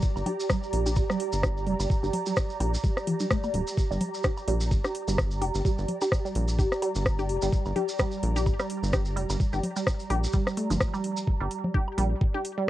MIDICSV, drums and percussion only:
0, 0, Header, 1, 2, 480
1, 0, Start_track
1, 0, Key_signature, -2, "minor"
1, 0, Tempo, 468750
1, 26, Time_signature, 4, 2, 24, 8
1, 13002, End_track
2, 0, Start_track
2, 0, Title_t, "Drums"
2, 20, Note_on_c, 9, 70, 60
2, 26, Note_on_c, 9, 36, 120
2, 122, Note_off_c, 9, 70, 0
2, 128, Note_off_c, 9, 36, 0
2, 160, Note_on_c, 9, 76, 58
2, 167, Note_on_c, 9, 70, 41
2, 262, Note_off_c, 9, 76, 0
2, 264, Note_on_c, 9, 61, 44
2, 264, Note_on_c, 9, 64, 90
2, 265, Note_on_c, 9, 46, 85
2, 269, Note_off_c, 9, 70, 0
2, 367, Note_off_c, 9, 46, 0
2, 367, Note_off_c, 9, 61, 0
2, 367, Note_off_c, 9, 64, 0
2, 407, Note_on_c, 9, 70, 65
2, 505, Note_off_c, 9, 70, 0
2, 505, Note_on_c, 9, 36, 104
2, 505, Note_on_c, 9, 37, 89
2, 505, Note_on_c, 9, 70, 68
2, 608, Note_off_c, 9, 36, 0
2, 608, Note_off_c, 9, 37, 0
2, 608, Note_off_c, 9, 70, 0
2, 645, Note_on_c, 9, 70, 38
2, 745, Note_on_c, 9, 46, 93
2, 748, Note_off_c, 9, 70, 0
2, 847, Note_off_c, 9, 46, 0
2, 880, Note_on_c, 9, 61, 46
2, 881, Note_on_c, 9, 70, 85
2, 981, Note_off_c, 9, 70, 0
2, 981, Note_on_c, 9, 70, 67
2, 982, Note_off_c, 9, 61, 0
2, 985, Note_on_c, 9, 36, 123
2, 985, Note_on_c, 9, 76, 63
2, 1084, Note_off_c, 9, 70, 0
2, 1088, Note_off_c, 9, 36, 0
2, 1088, Note_off_c, 9, 76, 0
2, 1122, Note_on_c, 9, 37, 59
2, 1132, Note_on_c, 9, 70, 42
2, 1224, Note_off_c, 9, 37, 0
2, 1225, Note_on_c, 9, 46, 95
2, 1234, Note_off_c, 9, 70, 0
2, 1328, Note_off_c, 9, 46, 0
2, 1355, Note_on_c, 9, 70, 85
2, 1457, Note_off_c, 9, 70, 0
2, 1466, Note_on_c, 9, 36, 103
2, 1466, Note_on_c, 9, 37, 89
2, 1466, Note_on_c, 9, 61, 41
2, 1467, Note_on_c, 9, 70, 59
2, 1568, Note_off_c, 9, 36, 0
2, 1568, Note_off_c, 9, 37, 0
2, 1568, Note_off_c, 9, 61, 0
2, 1570, Note_off_c, 9, 70, 0
2, 1609, Note_on_c, 9, 70, 37
2, 1704, Note_on_c, 9, 46, 88
2, 1712, Note_off_c, 9, 70, 0
2, 1807, Note_off_c, 9, 46, 0
2, 1841, Note_on_c, 9, 76, 61
2, 1843, Note_on_c, 9, 70, 76
2, 1943, Note_off_c, 9, 76, 0
2, 1945, Note_off_c, 9, 70, 0
2, 1946, Note_on_c, 9, 36, 125
2, 1954, Note_on_c, 9, 70, 69
2, 2048, Note_off_c, 9, 36, 0
2, 2057, Note_off_c, 9, 70, 0
2, 2083, Note_on_c, 9, 61, 44
2, 2088, Note_on_c, 9, 70, 37
2, 2185, Note_off_c, 9, 61, 0
2, 2186, Note_on_c, 9, 46, 92
2, 2187, Note_on_c, 9, 64, 86
2, 2190, Note_off_c, 9, 70, 0
2, 2288, Note_off_c, 9, 46, 0
2, 2289, Note_off_c, 9, 64, 0
2, 2316, Note_on_c, 9, 70, 68
2, 2418, Note_off_c, 9, 70, 0
2, 2423, Note_on_c, 9, 70, 62
2, 2425, Note_on_c, 9, 37, 86
2, 2426, Note_on_c, 9, 36, 103
2, 2526, Note_off_c, 9, 70, 0
2, 2528, Note_off_c, 9, 36, 0
2, 2528, Note_off_c, 9, 37, 0
2, 2558, Note_on_c, 9, 70, 39
2, 2661, Note_off_c, 9, 70, 0
2, 2666, Note_on_c, 9, 46, 89
2, 2667, Note_on_c, 9, 61, 41
2, 2667, Note_on_c, 9, 76, 63
2, 2769, Note_off_c, 9, 46, 0
2, 2769, Note_off_c, 9, 61, 0
2, 2769, Note_off_c, 9, 76, 0
2, 2808, Note_on_c, 9, 70, 79
2, 2905, Note_off_c, 9, 70, 0
2, 2905, Note_on_c, 9, 70, 67
2, 2906, Note_on_c, 9, 36, 120
2, 3007, Note_off_c, 9, 70, 0
2, 3008, Note_off_c, 9, 36, 0
2, 3041, Note_on_c, 9, 37, 55
2, 3047, Note_on_c, 9, 70, 35
2, 3144, Note_off_c, 9, 37, 0
2, 3145, Note_on_c, 9, 46, 98
2, 3150, Note_off_c, 9, 70, 0
2, 3248, Note_off_c, 9, 46, 0
2, 3275, Note_on_c, 9, 70, 73
2, 3282, Note_on_c, 9, 61, 46
2, 3378, Note_off_c, 9, 70, 0
2, 3384, Note_off_c, 9, 61, 0
2, 3385, Note_on_c, 9, 37, 88
2, 3386, Note_on_c, 9, 36, 104
2, 3387, Note_on_c, 9, 70, 58
2, 3488, Note_off_c, 9, 36, 0
2, 3488, Note_off_c, 9, 37, 0
2, 3490, Note_off_c, 9, 70, 0
2, 3515, Note_on_c, 9, 70, 37
2, 3521, Note_on_c, 9, 76, 59
2, 3618, Note_off_c, 9, 70, 0
2, 3624, Note_off_c, 9, 76, 0
2, 3624, Note_on_c, 9, 46, 87
2, 3727, Note_off_c, 9, 46, 0
2, 3761, Note_on_c, 9, 70, 74
2, 3864, Note_off_c, 9, 70, 0
2, 3866, Note_on_c, 9, 36, 114
2, 3870, Note_on_c, 9, 70, 61
2, 3968, Note_off_c, 9, 36, 0
2, 3973, Note_off_c, 9, 70, 0
2, 4013, Note_on_c, 9, 70, 37
2, 4105, Note_on_c, 9, 46, 85
2, 4106, Note_on_c, 9, 64, 86
2, 4115, Note_off_c, 9, 70, 0
2, 4208, Note_off_c, 9, 46, 0
2, 4208, Note_off_c, 9, 64, 0
2, 4243, Note_on_c, 9, 70, 71
2, 4340, Note_off_c, 9, 70, 0
2, 4340, Note_on_c, 9, 70, 62
2, 4345, Note_on_c, 9, 37, 81
2, 4346, Note_on_c, 9, 36, 97
2, 4346, Note_on_c, 9, 61, 43
2, 4442, Note_off_c, 9, 70, 0
2, 4448, Note_off_c, 9, 36, 0
2, 4448, Note_off_c, 9, 37, 0
2, 4449, Note_off_c, 9, 61, 0
2, 4478, Note_on_c, 9, 70, 37
2, 4481, Note_on_c, 9, 76, 62
2, 4581, Note_off_c, 9, 70, 0
2, 4583, Note_off_c, 9, 76, 0
2, 4585, Note_on_c, 9, 46, 94
2, 4688, Note_off_c, 9, 46, 0
2, 4716, Note_on_c, 9, 70, 73
2, 4819, Note_off_c, 9, 70, 0
2, 4826, Note_on_c, 9, 36, 116
2, 4828, Note_on_c, 9, 70, 61
2, 4929, Note_off_c, 9, 36, 0
2, 4930, Note_off_c, 9, 70, 0
2, 4961, Note_on_c, 9, 37, 53
2, 4961, Note_on_c, 9, 61, 42
2, 4962, Note_on_c, 9, 70, 37
2, 5063, Note_off_c, 9, 37, 0
2, 5064, Note_off_c, 9, 61, 0
2, 5065, Note_off_c, 9, 70, 0
2, 5066, Note_on_c, 9, 46, 90
2, 5169, Note_off_c, 9, 46, 0
2, 5202, Note_on_c, 9, 70, 80
2, 5304, Note_off_c, 9, 70, 0
2, 5305, Note_on_c, 9, 76, 64
2, 5306, Note_on_c, 9, 36, 100
2, 5307, Note_on_c, 9, 37, 85
2, 5309, Note_on_c, 9, 70, 61
2, 5408, Note_off_c, 9, 76, 0
2, 5409, Note_off_c, 9, 36, 0
2, 5409, Note_off_c, 9, 37, 0
2, 5412, Note_off_c, 9, 70, 0
2, 5437, Note_on_c, 9, 70, 37
2, 5540, Note_off_c, 9, 70, 0
2, 5546, Note_on_c, 9, 46, 87
2, 5547, Note_on_c, 9, 61, 42
2, 5649, Note_off_c, 9, 46, 0
2, 5649, Note_off_c, 9, 61, 0
2, 5680, Note_on_c, 9, 70, 70
2, 5783, Note_off_c, 9, 70, 0
2, 5786, Note_on_c, 9, 36, 112
2, 5793, Note_on_c, 9, 70, 65
2, 5889, Note_off_c, 9, 36, 0
2, 5895, Note_off_c, 9, 70, 0
2, 5921, Note_on_c, 9, 70, 33
2, 6023, Note_off_c, 9, 70, 0
2, 6026, Note_on_c, 9, 46, 86
2, 6027, Note_on_c, 9, 64, 83
2, 6128, Note_off_c, 9, 46, 0
2, 6129, Note_off_c, 9, 64, 0
2, 6157, Note_on_c, 9, 70, 71
2, 6162, Note_on_c, 9, 61, 39
2, 6162, Note_on_c, 9, 76, 67
2, 6260, Note_off_c, 9, 70, 0
2, 6264, Note_off_c, 9, 61, 0
2, 6264, Note_off_c, 9, 76, 0
2, 6266, Note_on_c, 9, 36, 104
2, 6266, Note_on_c, 9, 37, 81
2, 6277, Note_on_c, 9, 70, 59
2, 6368, Note_off_c, 9, 36, 0
2, 6368, Note_off_c, 9, 37, 0
2, 6379, Note_off_c, 9, 70, 0
2, 6408, Note_on_c, 9, 70, 34
2, 6506, Note_on_c, 9, 46, 87
2, 6510, Note_off_c, 9, 70, 0
2, 6608, Note_off_c, 9, 46, 0
2, 6637, Note_on_c, 9, 70, 77
2, 6740, Note_off_c, 9, 70, 0
2, 6746, Note_on_c, 9, 36, 117
2, 6747, Note_on_c, 9, 61, 45
2, 6750, Note_on_c, 9, 70, 67
2, 6848, Note_off_c, 9, 36, 0
2, 6850, Note_off_c, 9, 61, 0
2, 6852, Note_off_c, 9, 70, 0
2, 6882, Note_on_c, 9, 37, 53
2, 6883, Note_on_c, 9, 70, 37
2, 6984, Note_off_c, 9, 37, 0
2, 6985, Note_off_c, 9, 70, 0
2, 6987, Note_on_c, 9, 46, 92
2, 6987, Note_on_c, 9, 76, 66
2, 7089, Note_off_c, 9, 76, 0
2, 7090, Note_off_c, 9, 46, 0
2, 7119, Note_on_c, 9, 70, 73
2, 7221, Note_off_c, 9, 70, 0
2, 7225, Note_on_c, 9, 70, 52
2, 7226, Note_on_c, 9, 36, 102
2, 7227, Note_on_c, 9, 37, 83
2, 7328, Note_off_c, 9, 70, 0
2, 7329, Note_off_c, 9, 36, 0
2, 7330, Note_off_c, 9, 37, 0
2, 7358, Note_on_c, 9, 70, 41
2, 7361, Note_on_c, 9, 61, 41
2, 7461, Note_off_c, 9, 70, 0
2, 7463, Note_off_c, 9, 61, 0
2, 7466, Note_on_c, 9, 46, 82
2, 7568, Note_off_c, 9, 46, 0
2, 7597, Note_on_c, 9, 70, 74
2, 7699, Note_off_c, 9, 70, 0
2, 7706, Note_on_c, 9, 36, 113
2, 7707, Note_on_c, 9, 70, 71
2, 7808, Note_off_c, 9, 36, 0
2, 7809, Note_off_c, 9, 70, 0
2, 7837, Note_on_c, 9, 70, 36
2, 7841, Note_on_c, 9, 76, 69
2, 7940, Note_off_c, 9, 70, 0
2, 7944, Note_off_c, 9, 76, 0
2, 7946, Note_on_c, 9, 46, 87
2, 7947, Note_on_c, 9, 61, 41
2, 7947, Note_on_c, 9, 64, 86
2, 8049, Note_off_c, 9, 46, 0
2, 8049, Note_off_c, 9, 61, 0
2, 8049, Note_off_c, 9, 64, 0
2, 8076, Note_on_c, 9, 70, 66
2, 8178, Note_off_c, 9, 70, 0
2, 8180, Note_on_c, 9, 70, 69
2, 8186, Note_on_c, 9, 36, 97
2, 8187, Note_on_c, 9, 37, 83
2, 8283, Note_off_c, 9, 70, 0
2, 8288, Note_off_c, 9, 36, 0
2, 8289, Note_off_c, 9, 37, 0
2, 8311, Note_on_c, 9, 70, 36
2, 8413, Note_off_c, 9, 70, 0
2, 8427, Note_on_c, 9, 46, 85
2, 8529, Note_off_c, 9, 46, 0
2, 8561, Note_on_c, 9, 61, 41
2, 8563, Note_on_c, 9, 70, 69
2, 8664, Note_off_c, 9, 61, 0
2, 8665, Note_on_c, 9, 36, 109
2, 8666, Note_off_c, 9, 70, 0
2, 8666, Note_on_c, 9, 76, 69
2, 8667, Note_on_c, 9, 70, 60
2, 8768, Note_off_c, 9, 36, 0
2, 8769, Note_off_c, 9, 70, 0
2, 8769, Note_off_c, 9, 76, 0
2, 8801, Note_on_c, 9, 37, 55
2, 8801, Note_on_c, 9, 70, 36
2, 8903, Note_off_c, 9, 70, 0
2, 8904, Note_off_c, 9, 37, 0
2, 8906, Note_on_c, 9, 46, 87
2, 9008, Note_off_c, 9, 46, 0
2, 9048, Note_on_c, 9, 70, 80
2, 9145, Note_off_c, 9, 70, 0
2, 9145, Note_on_c, 9, 36, 98
2, 9145, Note_on_c, 9, 70, 57
2, 9146, Note_on_c, 9, 37, 84
2, 9146, Note_on_c, 9, 61, 39
2, 9247, Note_off_c, 9, 36, 0
2, 9247, Note_off_c, 9, 70, 0
2, 9249, Note_off_c, 9, 37, 0
2, 9249, Note_off_c, 9, 61, 0
2, 9272, Note_on_c, 9, 70, 38
2, 9374, Note_off_c, 9, 70, 0
2, 9387, Note_on_c, 9, 46, 83
2, 9489, Note_off_c, 9, 46, 0
2, 9521, Note_on_c, 9, 76, 69
2, 9522, Note_on_c, 9, 70, 81
2, 9623, Note_off_c, 9, 76, 0
2, 9625, Note_off_c, 9, 70, 0
2, 9625, Note_on_c, 9, 36, 107
2, 9627, Note_on_c, 9, 70, 65
2, 9727, Note_off_c, 9, 36, 0
2, 9730, Note_off_c, 9, 70, 0
2, 9760, Note_on_c, 9, 70, 39
2, 9762, Note_on_c, 9, 61, 43
2, 9862, Note_off_c, 9, 70, 0
2, 9864, Note_off_c, 9, 61, 0
2, 9865, Note_on_c, 9, 64, 88
2, 9866, Note_on_c, 9, 46, 86
2, 9967, Note_off_c, 9, 64, 0
2, 9968, Note_off_c, 9, 46, 0
2, 9999, Note_on_c, 9, 70, 74
2, 10102, Note_off_c, 9, 70, 0
2, 10105, Note_on_c, 9, 36, 100
2, 10105, Note_on_c, 9, 37, 89
2, 10111, Note_on_c, 9, 70, 63
2, 10207, Note_off_c, 9, 36, 0
2, 10207, Note_off_c, 9, 37, 0
2, 10213, Note_off_c, 9, 70, 0
2, 10237, Note_on_c, 9, 70, 35
2, 10241, Note_on_c, 9, 46, 34
2, 10339, Note_off_c, 9, 70, 0
2, 10343, Note_off_c, 9, 46, 0
2, 10345, Note_on_c, 9, 46, 89
2, 10346, Note_on_c, 9, 61, 42
2, 10346, Note_on_c, 9, 76, 68
2, 10448, Note_off_c, 9, 46, 0
2, 10448, Note_off_c, 9, 61, 0
2, 10448, Note_off_c, 9, 76, 0
2, 10484, Note_on_c, 9, 70, 69
2, 10575, Note_off_c, 9, 70, 0
2, 10575, Note_on_c, 9, 70, 61
2, 10585, Note_on_c, 9, 36, 115
2, 10677, Note_off_c, 9, 70, 0
2, 10687, Note_off_c, 9, 36, 0
2, 10720, Note_on_c, 9, 37, 59
2, 10726, Note_on_c, 9, 70, 35
2, 10823, Note_off_c, 9, 37, 0
2, 10825, Note_on_c, 9, 46, 92
2, 10828, Note_off_c, 9, 70, 0
2, 10928, Note_off_c, 9, 46, 0
2, 10960, Note_on_c, 9, 46, 35
2, 10962, Note_on_c, 9, 61, 45
2, 10964, Note_on_c, 9, 70, 71
2, 11062, Note_off_c, 9, 46, 0
2, 11064, Note_off_c, 9, 61, 0
2, 11064, Note_on_c, 9, 37, 92
2, 11065, Note_on_c, 9, 36, 101
2, 11067, Note_off_c, 9, 70, 0
2, 11067, Note_on_c, 9, 70, 56
2, 11167, Note_off_c, 9, 36, 0
2, 11167, Note_off_c, 9, 37, 0
2, 11170, Note_off_c, 9, 70, 0
2, 11200, Note_on_c, 9, 76, 66
2, 11202, Note_on_c, 9, 70, 39
2, 11303, Note_off_c, 9, 76, 0
2, 11304, Note_off_c, 9, 70, 0
2, 11305, Note_on_c, 9, 46, 86
2, 11407, Note_off_c, 9, 46, 0
2, 11437, Note_on_c, 9, 70, 73
2, 11539, Note_off_c, 9, 70, 0
2, 11545, Note_on_c, 9, 36, 117
2, 11647, Note_off_c, 9, 36, 0
2, 11785, Note_on_c, 9, 46, 89
2, 11888, Note_off_c, 9, 46, 0
2, 11922, Note_on_c, 9, 64, 97
2, 12024, Note_off_c, 9, 64, 0
2, 12025, Note_on_c, 9, 36, 103
2, 12027, Note_on_c, 9, 61, 44
2, 12127, Note_off_c, 9, 36, 0
2, 12129, Note_off_c, 9, 61, 0
2, 12163, Note_on_c, 9, 76, 65
2, 12266, Note_off_c, 9, 76, 0
2, 12266, Note_on_c, 9, 46, 89
2, 12369, Note_off_c, 9, 46, 0
2, 12505, Note_on_c, 9, 36, 119
2, 12607, Note_off_c, 9, 36, 0
2, 12643, Note_on_c, 9, 61, 42
2, 12746, Note_off_c, 9, 61, 0
2, 12746, Note_on_c, 9, 46, 92
2, 12849, Note_off_c, 9, 46, 0
2, 13002, End_track
0, 0, End_of_file